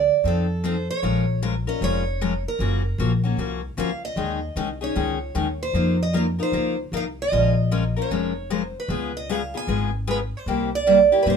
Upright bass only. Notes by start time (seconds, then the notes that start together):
0.24 F2
1.03 A#1
1.81 F1
2.59 F#1
2.98 A#1
3.37 C2
3.77 C#2
4.16 D#2
4.56 C2
4.95 C#2
5.35 D#2
5.73 F2
6.52 C#2
6.92 C2
7.32 A#1
8.10 F1
8.88 C#2
9.67 G#1
10.46 C2
11.26 G2